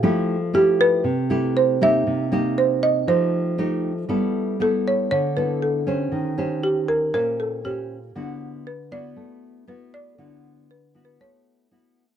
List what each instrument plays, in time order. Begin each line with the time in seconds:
0.03 nylon-string guitar F3 A3 E4 G4
0.54 nylon-string guitar A3 E4 G4, marimba G4
0.81 marimba B4
1.04 nylon-string guitar C3
1.30 nylon-string guitar A3 E4 G4
1.57 marimba C5
1.81 nylon-string guitar A#3 D#4 G4, marimba E5
2.07 nylon-string guitar C3
2.32 nylon-string guitar A#3 D#4 G4
2.58 marimba C5
2.83 marimba D#5
3.08 nylon-string guitar F3 A3 D#4 G4, marimba C5
3.58 nylon-string guitar A3 D#4 G4
4.09 nylon-string guitar G3 B3 E4 A4
4.60 nylon-string guitar B3 E4 A4, marimba A4
4.88 marimba C#5
5.11 nylon-string guitar D3, marimba C#5
5.36 nylon-string guitar B3 E4 A4, marimba B4
5.62 marimba A4
5.87 nylon-string guitar C#4 G4 C5
6.12 nylon-string guitar D#3
6.38 nylon-string guitar C#4 G4 C5
6.63 marimba G4
6.88 marimba A#4
7.14 nylon-string guitar A#2 C#4 G4 C5, marimba A#4
7.40 marimba A4
7.64 nylon-string guitar C#4 G4 C5, marimba G4
8.15 nylon-string guitar D3 B3 E4 F#4
8.67 marimba B4
8.91 nylon-string guitar B3 E4 F#4, marimba D5
9.16 nylon-string guitar A3
9.67 nylon-string guitar B3 E4 F#4, marimba B4
9.94 marimba D5
10.18 nylon-string guitar D3 B3 E4 F#4
10.71 marimba B4
10.95 nylon-string guitar B3 E4 F#4
11.05 marimba B4
11.20 nylon-string guitar A3, marimba C#5
11.71 nylon-string guitar B3 E4 F#4